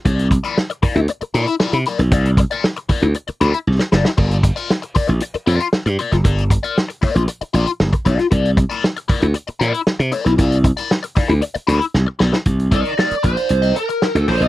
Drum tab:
CC |----------------|----------------|x---------------|----------------|
HH |xxxx-xoxxxxx-xxx|xxxx-xoxxxxx----|-xxx-xoxxxxx-xxx|xxxx-xoxxxxx-xxx|
SD |----o-------o--o|----o--------ooo|----o-------o--o|----o-------o--o|
BD |o-o---o---------|o-o---o---------|o-o---o---------|o-o---o------oo-|

CC |----------------|----------------|----------------|
HH |xxxx-xoxxxxx-xxx|xxxx-xoxxxxx----|xxxx-xxxxxxx-xox|
SD |----o-------o--o|----o-------o-oo|----o-------o---|
BD |o-o---o---------|o-o---o---------|o-o---o---------|